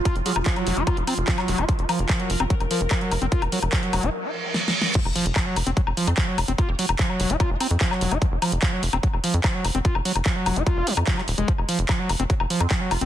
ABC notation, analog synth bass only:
X:1
M:4/4
L:1/16
Q:1/4=147
K:Fphr
V:1 name="Analog synth bass" clef=bass
z F,,, z F,,, z2 F,,, F,,, z F,,, z F,,, z2 F,,, F,,, | z F,,, z F,,, z2 F,,, F,,, z F,,, z F,,, z2 F,,, F,,, | z F,,, z F,,, z2 F,,, F,,, z8 | z F,,, z F,,, z2 F,,, F,,, z F,,, z F,, z2 F,,, F,,, |
z F,,, z F,,, z2 F,,, F,,, z F,,, z F,, z2 F,,, F,,, | z F,,, z F,,, z2 F,,, F,,, z F,,, z F,, z2 F,,, F,,, | z F,,, z F,,, z2 F,,, F,,, z F,,, z F,, z2 E,,, F,,, | z F,,, z F,,, z2 F,,, F,,, z F,,, z F,, z2 F,,, F,,, |]